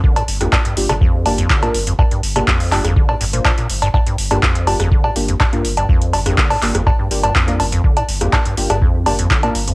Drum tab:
HH |-xox-xox--ox-xox|-xox-oox--ox-xox|-xox-xox--ox-xox|-xox-oox--ox-xox|
CB |-x--x--x--x--x--|x--x--x--x--x--x|x--x--x--x--x--x|--x--x--x--x--x-|
CP |----x-------x---|----x-x-----x---|----x-------x---|----x-x-----x---|
SD |---r---r--------|---r---r--------|---r---r--------|---r---r--------|
BD |o---o---o---o---|o---o---o---o---|o---o---o---o---|o---o---o---o---|

HH |-xox-xox--ox-xox|
CB |-x--x--x--x--x--|
CP |----x-------x---|
SD |---r---r--------|
BD |o---o---o---o---|